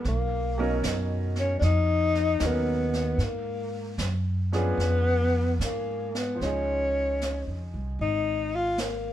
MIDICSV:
0, 0, Header, 1, 5, 480
1, 0, Start_track
1, 0, Tempo, 786370
1, 26, Time_signature, 4, 2, 24, 8
1, 2426, Tempo, 806452
1, 3866, Tempo, 789474
1, 5529, End_track
2, 0, Start_track
2, 0, Title_t, "Grand piano"
2, 0, Program_c, 0, 0
2, 0, Control_c, 0, 64, 127
2, 35, Control_c, 0, 64, 0
2, 154, Control_c, 0, 64, 127
2, 354, Note_on_c, 0, 54, 64
2, 359, Note_on_c, 0, 47, 59
2, 361, Note_on_c, 0, 61, 65
2, 362, Note_on_c, 0, 63, 57
2, 366, Note_on_c, 0, 70, 77
2, 492, Note_off_c, 0, 54, 0
2, 495, Note_off_c, 0, 47, 0
2, 495, Note_off_c, 0, 61, 0
2, 496, Note_off_c, 0, 63, 0
2, 498, Note_off_c, 0, 70, 0
2, 1466, Note_on_c, 0, 54, 53
2, 1473, Note_on_c, 0, 61, 52
2, 1475, Note_on_c, 0, 59, 48
2, 1479, Note_on_c, 0, 63, 48
2, 1480, Note_on_c, 0, 70, 59
2, 1756, Note_off_c, 0, 54, 0
2, 1759, Note_off_c, 0, 61, 0
2, 1761, Note_off_c, 0, 59, 0
2, 1763, Note_off_c, 0, 63, 0
2, 1763, Note_off_c, 0, 70, 0
2, 1952, Control_c, 0, 64, 0
2, 2044, Control_c, 0, 64, 127
2, 2753, Note_on_c, 0, 59, 54
2, 2755, Note_on_c, 0, 53, 64
2, 2757, Note_on_c, 0, 61, 59
2, 2761, Note_on_c, 0, 62, 53
2, 2765, Note_on_c, 0, 68, 66
2, 2908, Control_c, 0, 64, 0
2, 3004, Control_c, 0, 64, 127
2, 3356, Note_off_c, 0, 59, 0
2, 3357, Note_off_c, 0, 53, 0
2, 3358, Note_off_c, 0, 61, 0
2, 3360, Note_off_c, 0, 62, 0
2, 3362, Note_off_c, 0, 68, 0
2, 3840, Note_on_c, 0, 53, 46
2, 3854, Note_on_c, 0, 72, 38
2, 3873, Control_c, 0, 64, 0
2, 3875, Note_on_c, 0, 49, 42
2, 3891, Note_on_c, 0, 63, 42
2, 3907, Note_on_c, 0, 68, 48
2, 3984, Control_c, 0, 64, 127
2, 5529, Note_off_c, 0, 49, 0
2, 5529, Note_off_c, 0, 53, 0
2, 5529, Note_off_c, 0, 63, 0
2, 5529, Note_off_c, 0, 68, 0
2, 5529, Note_off_c, 0, 72, 0
2, 5529, End_track
3, 0, Start_track
3, 0, Title_t, "Tenor saxophone"
3, 0, Program_c, 1, 66
3, 52, Note_on_c, 1, 58, 82
3, 494, Note_off_c, 1, 58, 0
3, 854, Note_on_c, 1, 61, 80
3, 962, Note_off_c, 1, 61, 0
3, 974, Note_on_c, 1, 62, 73
3, 1002, Note_on_c, 1, 63, 108
3, 1011, Note_off_c, 1, 62, 0
3, 1499, Note_on_c, 1, 59, 84
3, 1508, Note_off_c, 1, 63, 0
3, 1974, Note_on_c, 1, 58, 79
3, 1984, Note_off_c, 1, 59, 0
3, 2441, Note_off_c, 1, 58, 0
3, 2772, Note_on_c, 1, 59, 98
3, 3374, Note_off_c, 1, 59, 0
3, 3416, Note_on_c, 1, 58, 78
3, 3734, Note_on_c, 1, 59, 77
3, 3743, Note_off_c, 1, 58, 0
3, 3878, Note_off_c, 1, 59, 0
3, 3885, Note_on_c, 1, 61, 96
3, 4659, Note_off_c, 1, 61, 0
3, 4852, Note_on_c, 1, 63, 89
3, 5177, Note_on_c, 1, 65, 91
3, 5186, Note_off_c, 1, 63, 0
3, 5333, Note_on_c, 1, 58, 76
3, 5342, Note_off_c, 1, 65, 0
3, 5529, Note_off_c, 1, 58, 0
3, 5529, End_track
4, 0, Start_track
4, 0, Title_t, "Upright bass"
4, 0, Program_c, 2, 32
4, 28, Note_on_c, 2, 35, 81
4, 491, Note_off_c, 2, 35, 0
4, 507, Note_on_c, 2, 42, 74
4, 972, Note_off_c, 2, 42, 0
4, 983, Note_on_c, 2, 41, 74
4, 1449, Note_off_c, 2, 41, 0
4, 1469, Note_on_c, 2, 39, 74
4, 1932, Note_off_c, 2, 39, 0
4, 1940, Note_on_c, 2, 44, 71
4, 2410, Note_off_c, 2, 44, 0
4, 2429, Note_on_c, 2, 42, 76
4, 2887, Note_off_c, 2, 42, 0
4, 2902, Note_on_c, 2, 41, 72
4, 3370, Note_off_c, 2, 41, 0
4, 3389, Note_on_c, 2, 44, 73
4, 3854, Note_off_c, 2, 44, 0
4, 3872, Note_on_c, 2, 37, 66
4, 4488, Note_off_c, 2, 37, 0
4, 4520, Note_on_c, 2, 41, 46
4, 4665, Note_off_c, 2, 41, 0
4, 4683, Note_on_c, 2, 36, 60
4, 4826, Note_off_c, 2, 36, 0
4, 4836, Note_on_c, 2, 32, 74
4, 5529, Note_off_c, 2, 32, 0
4, 5529, End_track
5, 0, Start_track
5, 0, Title_t, "Drums"
5, 31, Note_on_c, 9, 25, 41
5, 31, Note_on_c, 9, 38, 40
5, 92, Note_off_c, 9, 38, 0
5, 509, Note_on_c, 9, 38, 52
5, 509, Note_on_c, 9, 44, 55
5, 570, Note_off_c, 9, 38, 0
5, 570, Note_off_c, 9, 44, 0
5, 828, Note_on_c, 9, 38, 37
5, 890, Note_off_c, 9, 38, 0
5, 987, Note_off_c, 9, 25, 0
5, 987, Note_on_c, 9, 25, 43
5, 987, Note_on_c, 9, 38, 39
5, 1048, Note_off_c, 9, 38, 0
5, 1312, Note_on_c, 9, 38, 29
5, 1373, Note_off_c, 9, 38, 0
5, 1464, Note_on_c, 9, 38, 54
5, 1464, Note_on_c, 9, 44, 51
5, 1525, Note_off_c, 9, 38, 0
5, 1525, Note_off_c, 9, 44, 0
5, 1791, Note_on_c, 9, 38, 36
5, 1852, Note_off_c, 9, 38, 0
5, 1946, Note_off_c, 9, 25, 0
5, 1946, Note_on_c, 9, 25, 39
5, 1946, Note_on_c, 9, 38, 34
5, 2007, Note_off_c, 9, 38, 0
5, 2431, Note_on_c, 9, 38, 52
5, 2431, Note_on_c, 9, 44, 44
5, 2490, Note_off_c, 9, 38, 0
5, 2490, Note_off_c, 9, 44, 0
5, 2756, Note_on_c, 9, 38, 33
5, 2816, Note_off_c, 9, 38, 0
5, 2914, Note_off_c, 9, 25, 0
5, 2914, Note_on_c, 9, 25, 41
5, 2914, Note_on_c, 9, 38, 41
5, 2974, Note_off_c, 9, 38, 0
5, 3397, Note_on_c, 9, 38, 54
5, 3397, Note_on_c, 9, 44, 55
5, 3457, Note_off_c, 9, 38, 0
5, 3457, Note_off_c, 9, 44, 0
5, 3720, Note_on_c, 9, 38, 33
5, 3779, Note_off_c, 9, 38, 0
5, 3876, Note_off_c, 9, 25, 0
5, 3876, Note_on_c, 9, 25, 34
5, 3876, Note_on_c, 9, 38, 25
5, 3937, Note_off_c, 9, 38, 0
5, 4365, Note_on_c, 9, 38, 42
5, 4365, Note_on_c, 9, 44, 51
5, 4426, Note_off_c, 9, 38, 0
5, 4426, Note_off_c, 9, 44, 0
5, 4839, Note_off_c, 9, 25, 0
5, 4839, Note_on_c, 9, 25, 28
5, 5317, Note_on_c, 9, 38, 40
5, 5317, Note_on_c, 9, 44, 48
5, 5377, Note_off_c, 9, 38, 0
5, 5377, Note_off_c, 9, 44, 0
5, 5529, Note_off_c, 9, 25, 0
5, 5529, End_track
0, 0, End_of_file